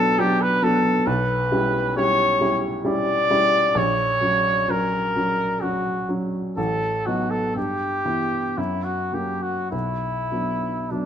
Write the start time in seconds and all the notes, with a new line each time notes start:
Already playing: B1 F#3 B3 D4 A4
0.19 F#3 B3 D4 G4
0.41 B4
0.62 F#3 B3 D4 A4
1.07 B1 B4
1.52 G3 C#4 E4
1.97 G3 C#4 E4 C#5
2.41 G3 C#4 E4
2.85 G3 C#4 E4 D5
3.30 G3 C#4 E4
3.75 A#1 C#5
4.21 F#3 C#4
4.68 F#3 C#4 A#4
5.16 F#3 C#4
5.62 F#3 C#4 F#4
6.09 F#3 C#4
6.57 A1 A4
7.06 F#3 B3 D#4 F#4
7.30 A4
7.55 G2 G4
8.05 E3 B3 E4
8.57 F#2 E4
8.84 F#4
9.12 F#3 A#3 C#4 G4
9.42 F#4
9.71 B1 E4
10.32 F#3 B3 D4
10.90 F#3 B3 D4